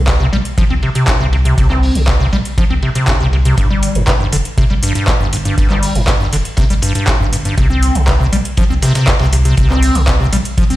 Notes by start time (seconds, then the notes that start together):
Already playing: C2
0.07 C3, kick, snare, clap, closed hi-hat, ride
0.20 C3
0.33 A#1 G3, ride
0.45 closed hi-hat
0.58 F3, kick, closed hi-hat, ride
0.70 C2 C4, ride
0.82 C3, ride
0.95 C3, closed hi-hat, ride
1.07 C2, kick, snare, clap, closed hi-hat, ride
1.20 C2 C3
1.33 C3, ride
1.45 C3, closed hi-hat
1.58 C2 C3, kick, closed hi-hat, ride
1.70 C4, clap
1.83 open hi-hat
1.95 C2 C3, closed hi-hat
2.07 C3, kick, snare, clap, closed hi-hat, ride
2.20 C3
2.32 A#1 G3, ride
2.45 closed hi-hat
2.58 F3, kick, closed hi-hat, ride
2.70 C2 C4, ride
2.82 C3, ride
2.95 C3, closed hi-hat, ride
3.08 C2, kick, snare, clap, closed hi-hat, ride
3.20 C2 C3
3.33 C3, ride
3.45 C3, closed hi-hat
3.57 G1 G2, kick, closed hi-hat, ride
3.70 G3
3.82 open hi-hat, ride
3.95 G1 G2, closed hi-hat
4.07 G2, kick, snare, clap, closed hi-hat, ride
4.20 G2
4.32 F1 D3, open hi-hat, ride
4.45 closed hi-hat
4.58 C3, kick, closed hi-hat, ride
4.70 G1 G3, ride
4.83 G2, open hi-hat, ride
4.95 G2, closed hi-hat, ride
5.07 G1, kick, snare, clap, closed hi-hat, ride
5.20 G1 G2
5.33 G2, open hi-hat, ride
5.45 G2, closed hi-hat
5.58 G1 G2, kick, closed hi-hat, ride
5.70 G3, clap
5.83 open hi-hat
5.95 G1 G2, closed hi-hat
6.08 G2, kick, snare, clap, closed hi-hat, ride
6.20 G2
6.33 F1 D3, open hi-hat, ride
6.45 closed hi-hat
6.57 C3, kick, snare, closed hi-hat, ride
6.70 G1 G3, open hi-hat
6.82 G2, open hi-hat, ride
6.95 G2, closed hi-hat, ride
7.07 G1, kick, snare, clap, closed hi-hat, ride
7.20 G1 G2
7.32 G2, open hi-hat, ride
7.45 G2, closed hi-hat
7.57 C2 C3, kick, closed hi-hat, ride
7.70 C4
7.82 open hi-hat, ride
7.95 C2 C3, closed hi-hat
8.07 C3, kick, snare, clap, closed hi-hat, ride
8.20 C3
8.32 A#1 G3, open hi-hat, ride
8.45 closed hi-hat
8.57 F3, kick, closed hi-hat, ride
8.70 C2 C4, ride
8.82 C3, snare, open hi-hat, ride
8.95 C3, snare, closed hi-hat, ride
9.07 C2, kick, snare, clap, closed hi-hat, ride
9.19 C2 C3, snare, ride
9.33 C3, open hi-hat, ride
9.45 C3, closed hi-hat
9.57 C2 C3, kick, closed hi-hat, ride
9.70 C4, clap
9.82 open hi-hat
9.95 C2 C3, closed hi-hat
10.07 C3, kick, snare, clap, closed hi-hat, ride
10.20 C3
10.33 A#1 G3, open hi-hat, ride
10.45 closed hi-hat
10.57 F3, kick, closed hi-hat, ride
10.70 C2 C4, open hi-hat, ride